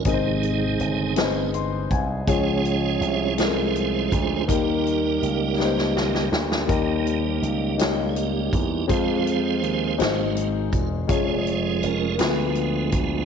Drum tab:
HH |x-x-x-x-x-x-|x-x-x-x-x-x-|x-x-x-------|x-x-x-x-x-x-|
SD |------o-----|------o-----|------oooooo|------o-----|
BD |o---------o-|o---------o-|o-----------|o---------o-|

HH |x-x-x-x-x-x-|x-x-x-x-x-x-|
SD |------o-----|------o-----|
BD |o---------o-|o---------o-|